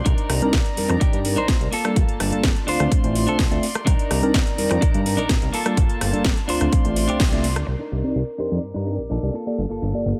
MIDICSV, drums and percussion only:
0, 0, Header, 1, 2, 480
1, 0, Start_track
1, 0, Tempo, 476190
1, 59, Time_signature, 4, 2, 24, 8
1, 10281, End_track
2, 0, Start_track
2, 0, Title_t, "Drums"
2, 57, Note_on_c, 9, 42, 87
2, 58, Note_on_c, 9, 36, 116
2, 158, Note_off_c, 9, 42, 0
2, 159, Note_off_c, 9, 36, 0
2, 181, Note_on_c, 9, 42, 38
2, 281, Note_off_c, 9, 42, 0
2, 298, Note_on_c, 9, 37, 67
2, 298, Note_on_c, 9, 46, 106
2, 399, Note_off_c, 9, 37, 0
2, 399, Note_off_c, 9, 46, 0
2, 422, Note_on_c, 9, 42, 37
2, 522, Note_off_c, 9, 42, 0
2, 534, Note_on_c, 9, 38, 112
2, 538, Note_on_c, 9, 36, 115
2, 539, Note_on_c, 9, 42, 88
2, 635, Note_off_c, 9, 38, 0
2, 639, Note_off_c, 9, 36, 0
2, 639, Note_off_c, 9, 42, 0
2, 662, Note_on_c, 9, 42, 38
2, 763, Note_off_c, 9, 42, 0
2, 779, Note_on_c, 9, 46, 104
2, 879, Note_off_c, 9, 46, 0
2, 902, Note_on_c, 9, 37, 63
2, 902, Note_on_c, 9, 42, 38
2, 1003, Note_off_c, 9, 37, 0
2, 1003, Note_off_c, 9, 42, 0
2, 1018, Note_on_c, 9, 42, 87
2, 1019, Note_on_c, 9, 36, 118
2, 1119, Note_off_c, 9, 36, 0
2, 1119, Note_off_c, 9, 42, 0
2, 1142, Note_on_c, 9, 42, 37
2, 1243, Note_off_c, 9, 42, 0
2, 1257, Note_on_c, 9, 46, 102
2, 1358, Note_off_c, 9, 46, 0
2, 1382, Note_on_c, 9, 42, 38
2, 1483, Note_off_c, 9, 42, 0
2, 1494, Note_on_c, 9, 38, 110
2, 1499, Note_on_c, 9, 36, 118
2, 1499, Note_on_c, 9, 42, 87
2, 1595, Note_off_c, 9, 38, 0
2, 1599, Note_off_c, 9, 36, 0
2, 1600, Note_off_c, 9, 42, 0
2, 1623, Note_on_c, 9, 42, 37
2, 1724, Note_off_c, 9, 42, 0
2, 1739, Note_on_c, 9, 46, 105
2, 1840, Note_off_c, 9, 46, 0
2, 1863, Note_on_c, 9, 37, 86
2, 1863, Note_on_c, 9, 42, 38
2, 1964, Note_off_c, 9, 37, 0
2, 1964, Note_off_c, 9, 42, 0
2, 1978, Note_on_c, 9, 36, 113
2, 1979, Note_on_c, 9, 42, 93
2, 2079, Note_off_c, 9, 36, 0
2, 2080, Note_off_c, 9, 42, 0
2, 2102, Note_on_c, 9, 42, 38
2, 2203, Note_off_c, 9, 42, 0
2, 2219, Note_on_c, 9, 37, 66
2, 2219, Note_on_c, 9, 46, 104
2, 2320, Note_off_c, 9, 37, 0
2, 2320, Note_off_c, 9, 46, 0
2, 2344, Note_on_c, 9, 42, 39
2, 2444, Note_off_c, 9, 42, 0
2, 2454, Note_on_c, 9, 38, 113
2, 2459, Note_on_c, 9, 36, 111
2, 2459, Note_on_c, 9, 42, 91
2, 2555, Note_off_c, 9, 38, 0
2, 2559, Note_off_c, 9, 36, 0
2, 2560, Note_off_c, 9, 42, 0
2, 2584, Note_on_c, 9, 42, 39
2, 2684, Note_off_c, 9, 42, 0
2, 2700, Note_on_c, 9, 46, 100
2, 2801, Note_off_c, 9, 46, 0
2, 2823, Note_on_c, 9, 37, 65
2, 2823, Note_on_c, 9, 42, 40
2, 2924, Note_off_c, 9, 37, 0
2, 2924, Note_off_c, 9, 42, 0
2, 2939, Note_on_c, 9, 36, 113
2, 2940, Note_on_c, 9, 42, 87
2, 3040, Note_off_c, 9, 36, 0
2, 3041, Note_off_c, 9, 42, 0
2, 3063, Note_on_c, 9, 42, 39
2, 3164, Note_off_c, 9, 42, 0
2, 3180, Note_on_c, 9, 46, 100
2, 3281, Note_off_c, 9, 46, 0
2, 3303, Note_on_c, 9, 42, 38
2, 3404, Note_off_c, 9, 42, 0
2, 3415, Note_on_c, 9, 38, 108
2, 3419, Note_on_c, 9, 36, 114
2, 3420, Note_on_c, 9, 46, 57
2, 3516, Note_off_c, 9, 38, 0
2, 3520, Note_off_c, 9, 36, 0
2, 3521, Note_off_c, 9, 46, 0
2, 3544, Note_on_c, 9, 42, 39
2, 3645, Note_off_c, 9, 42, 0
2, 3660, Note_on_c, 9, 46, 102
2, 3761, Note_off_c, 9, 46, 0
2, 3783, Note_on_c, 9, 37, 83
2, 3783, Note_on_c, 9, 42, 38
2, 3884, Note_off_c, 9, 37, 0
2, 3884, Note_off_c, 9, 42, 0
2, 3900, Note_on_c, 9, 36, 116
2, 3900, Note_on_c, 9, 42, 94
2, 4001, Note_off_c, 9, 36, 0
2, 4001, Note_off_c, 9, 42, 0
2, 4025, Note_on_c, 9, 42, 41
2, 4125, Note_off_c, 9, 42, 0
2, 4140, Note_on_c, 9, 37, 63
2, 4140, Note_on_c, 9, 46, 102
2, 4241, Note_off_c, 9, 37, 0
2, 4241, Note_off_c, 9, 46, 0
2, 4264, Note_on_c, 9, 42, 40
2, 4365, Note_off_c, 9, 42, 0
2, 4377, Note_on_c, 9, 38, 120
2, 4380, Note_on_c, 9, 36, 107
2, 4381, Note_on_c, 9, 42, 95
2, 4478, Note_off_c, 9, 38, 0
2, 4481, Note_off_c, 9, 36, 0
2, 4482, Note_off_c, 9, 42, 0
2, 4505, Note_on_c, 9, 42, 41
2, 4605, Note_off_c, 9, 42, 0
2, 4621, Note_on_c, 9, 46, 98
2, 4721, Note_off_c, 9, 46, 0
2, 4744, Note_on_c, 9, 37, 61
2, 4744, Note_on_c, 9, 42, 42
2, 4845, Note_off_c, 9, 37, 0
2, 4845, Note_off_c, 9, 42, 0
2, 4860, Note_on_c, 9, 36, 115
2, 4860, Note_on_c, 9, 42, 94
2, 4961, Note_off_c, 9, 36, 0
2, 4961, Note_off_c, 9, 42, 0
2, 4983, Note_on_c, 9, 42, 40
2, 5084, Note_off_c, 9, 42, 0
2, 5100, Note_on_c, 9, 46, 98
2, 5201, Note_off_c, 9, 46, 0
2, 5224, Note_on_c, 9, 42, 40
2, 5325, Note_off_c, 9, 42, 0
2, 5336, Note_on_c, 9, 38, 117
2, 5340, Note_on_c, 9, 36, 112
2, 5340, Note_on_c, 9, 42, 94
2, 5436, Note_off_c, 9, 38, 0
2, 5440, Note_off_c, 9, 36, 0
2, 5441, Note_off_c, 9, 42, 0
2, 5463, Note_on_c, 9, 42, 41
2, 5564, Note_off_c, 9, 42, 0
2, 5580, Note_on_c, 9, 46, 97
2, 5681, Note_off_c, 9, 46, 0
2, 5703, Note_on_c, 9, 37, 79
2, 5703, Note_on_c, 9, 42, 41
2, 5804, Note_off_c, 9, 37, 0
2, 5804, Note_off_c, 9, 42, 0
2, 5819, Note_on_c, 9, 36, 114
2, 5819, Note_on_c, 9, 42, 98
2, 5920, Note_off_c, 9, 36, 0
2, 5920, Note_off_c, 9, 42, 0
2, 5942, Note_on_c, 9, 42, 41
2, 6043, Note_off_c, 9, 42, 0
2, 6061, Note_on_c, 9, 37, 64
2, 6061, Note_on_c, 9, 46, 105
2, 6161, Note_off_c, 9, 37, 0
2, 6161, Note_off_c, 9, 46, 0
2, 6184, Note_on_c, 9, 42, 42
2, 6285, Note_off_c, 9, 42, 0
2, 6295, Note_on_c, 9, 38, 120
2, 6300, Note_on_c, 9, 36, 112
2, 6300, Note_on_c, 9, 42, 96
2, 6396, Note_off_c, 9, 38, 0
2, 6400, Note_off_c, 9, 36, 0
2, 6401, Note_off_c, 9, 42, 0
2, 6424, Note_on_c, 9, 42, 42
2, 6525, Note_off_c, 9, 42, 0
2, 6539, Note_on_c, 9, 46, 101
2, 6640, Note_off_c, 9, 46, 0
2, 6662, Note_on_c, 9, 37, 62
2, 6662, Note_on_c, 9, 42, 42
2, 6763, Note_off_c, 9, 37, 0
2, 6763, Note_off_c, 9, 42, 0
2, 6779, Note_on_c, 9, 42, 95
2, 6780, Note_on_c, 9, 36, 118
2, 6880, Note_off_c, 9, 36, 0
2, 6880, Note_off_c, 9, 42, 0
2, 6903, Note_on_c, 9, 42, 40
2, 7003, Note_off_c, 9, 42, 0
2, 7019, Note_on_c, 9, 46, 100
2, 7120, Note_off_c, 9, 46, 0
2, 7143, Note_on_c, 9, 42, 41
2, 7244, Note_off_c, 9, 42, 0
2, 7255, Note_on_c, 9, 38, 118
2, 7260, Note_on_c, 9, 36, 117
2, 7260, Note_on_c, 9, 46, 59
2, 7356, Note_off_c, 9, 38, 0
2, 7361, Note_off_c, 9, 36, 0
2, 7361, Note_off_c, 9, 46, 0
2, 7382, Note_on_c, 9, 42, 42
2, 7483, Note_off_c, 9, 42, 0
2, 7500, Note_on_c, 9, 46, 99
2, 7600, Note_off_c, 9, 46, 0
2, 7623, Note_on_c, 9, 37, 80
2, 7623, Note_on_c, 9, 42, 41
2, 7723, Note_off_c, 9, 37, 0
2, 7723, Note_off_c, 9, 42, 0
2, 7740, Note_on_c, 9, 49, 78
2, 7840, Note_off_c, 9, 49, 0
2, 7983, Note_on_c, 9, 82, 73
2, 8084, Note_off_c, 9, 82, 0
2, 8108, Note_on_c, 9, 82, 39
2, 8208, Note_off_c, 9, 82, 0
2, 8220, Note_on_c, 9, 42, 89
2, 8225, Note_on_c, 9, 82, 31
2, 8321, Note_off_c, 9, 42, 0
2, 8325, Note_off_c, 9, 82, 0
2, 8459, Note_on_c, 9, 42, 62
2, 8463, Note_on_c, 9, 82, 71
2, 8560, Note_off_c, 9, 42, 0
2, 8564, Note_off_c, 9, 82, 0
2, 8582, Note_on_c, 9, 42, 38
2, 8586, Note_on_c, 9, 82, 42
2, 8683, Note_off_c, 9, 42, 0
2, 8687, Note_off_c, 9, 82, 0
2, 8699, Note_on_c, 9, 42, 83
2, 8703, Note_on_c, 9, 82, 30
2, 8799, Note_off_c, 9, 42, 0
2, 8804, Note_off_c, 9, 82, 0
2, 8822, Note_on_c, 9, 42, 36
2, 8922, Note_off_c, 9, 42, 0
2, 8942, Note_on_c, 9, 82, 69
2, 9043, Note_off_c, 9, 82, 0
2, 9063, Note_on_c, 9, 42, 38
2, 9067, Note_on_c, 9, 82, 40
2, 9163, Note_off_c, 9, 42, 0
2, 9168, Note_off_c, 9, 82, 0
2, 9179, Note_on_c, 9, 42, 86
2, 9183, Note_on_c, 9, 82, 30
2, 9279, Note_off_c, 9, 42, 0
2, 9284, Note_off_c, 9, 82, 0
2, 9301, Note_on_c, 9, 42, 38
2, 9401, Note_off_c, 9, 42, 0
2, 9418, Note_on_c, 9, 42, 60
2, 9422, Note_on_c, 9, 82, 70
2, 9519, Note_off_c, 9, 42, 0
2, 9523, Note_off_c, 9, 82, 0
2, 9542, Note_on_c, 9, 42, 37
2, 9546, Note_on_c, 9, 82, 39
2, 9642, Note_off_c, 9, 42, 0
2, 9647, Note_off_c, 9, 82, 0
2, 9659, Note_on_c, 9, 42, 83
2, 9664, Note_on_c, 9, 82, 30
2, 9760, Note_off_c, 9, 42, 0
2, 9765, Note_off_c, 9, 82, 0
2, 9782, Note_on_c, 9, 42, 37
2, 9883, Note_off_c, 9, 42, 0
2, 9898, Note_on_c, 9, 42, 61
2, 9903, Note_on_c, 9, 82, 69
2, 9999, Note_off_c, 9, 42, 0
2, 10004, Note_off_c, 9, 82, 0
2, 10023, Note_on_c, 9, 42, 36
2, 10027, Note_on_c, 9, 82, 39
2, 10124, Note_off_c, 9, 42, 0
2, 10128, Note_off_c, 9, 82, 0
2, 10140, Note_on_c, 9, 42, 84
2, 10144, Note_on_c, 9, 82, 29
2, 10240, Note_off_c, 9, 42, 0
2, 10245, Note_off_c, 9, 82, 0
2, 10281, End_track
0, 0, End_of_file